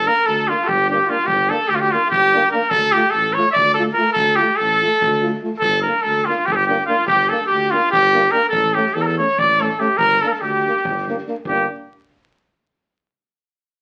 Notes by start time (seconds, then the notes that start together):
0.05 A#3 D4 A#4, snare
0.25 D2 A4, snare
0.38 snare
0.48 A#3 D4 F4, snare
0.58 A4, snare
0.64 G4 A4
0.68 G1, kick
0.81 snare
0.87 D4 G4, snare
0.92 A#3
1.00 snare
1.05 D4 F4
1.09 A#3 F4, snare
1.19 snare
1.24 G1 G4, kick
1.49 A#3 D4 A4, snare
1.68 D2 G4, snare
1.75 F4
1.80 G4, snare
1.91 A#3 D4 F4, snare
2.02 snare
2.08 G1 G4
2.12 kick
2.23 snare
2.33 A#3 D4, snare
2.42 snare
2.49 D4 A#4, snare
2.54 A#3
2.61 snare
2.69 D2 A4, kick
2.92 A3 F4 G4, snare
3.04 snare
3.10 A1 A4, snare
3.25 snare
3.33 F4 C#5, snare
3.38 A3
3.46 snare
3.51 D5 E5
3.56 D2, kick
3.68 snare
3.74 F4 A4, snare
3.81 A3
3.87 snare
3.94 F4 A#4, snare
3.99 A3
4.13 A4, kick
4.17 D2
4.28 snare
4.36 F4 G4
4.40 A3, snare
4.50 snare
4.57 A1 A4, snare
4.71 snare
4.81 A3 F4, snare
4.93 snare
5.02 D2, kick
5.13 snare
5.22 A3 F4, snare
5.34 snare
5.43 A3 F4, snare
5.53 snare
5.58 A4, kick
5.63 G1
5.82 D4 A#4, snare
5.87 A#3
5.96 snare
6.02 D2 A4, snare
6.17 snare
6.25 A#3 D4 F4
6.29 snare
6.39 snare
6.45 G1 G4, kick
6.51 A4
6.55 G4
6.60 snare
6.66 A#3 D4 G4, snare
6.79 snare
6.85 A#3 D4 F4
6.90 snare
6.99 snare
7.06 G1 G4, kick
7.29 A#3 D4 A4, snare
7.40 snare
7.47 D2 G4, snare
7.62 snare
7.71 A#3 D4 F4, snare
7.91 G1 G4, kick
8.14 A#3 D4, snare
8.25 snare
8.31 A#3 D4 A#4, snare
8.49 A4, kick
8.53 A1
8.74 A3 C#4 G4, snare
8.86 snare
8.94 E2 A4, snare
9.02 A#4
9.06 A4, snare
9.18 A3 C#4 C#5, snare
9.28 snare
9.38 A1 D5, kick
9.49 snare
9.60 A3 C#4 A4, snare
9.70 snare
9.80 A3 C#4 G4, snare
9.89 snare
9.97 G1 A#4, kick
10.10 snare
10.22 A#3 D4 A4, snare
10.28 A4 A#4
10.32 A4, snare
10.41 D2 G4, snare
10.53 snare
10.65 A#3 D4, snare
10.76 snare
10.84 G1, kick
10.97 snare
11.07 A#3 D4, snare
11.17 snare
11.26 A#3 D4, snare
11.45 G1 A#3 D4 G4, kick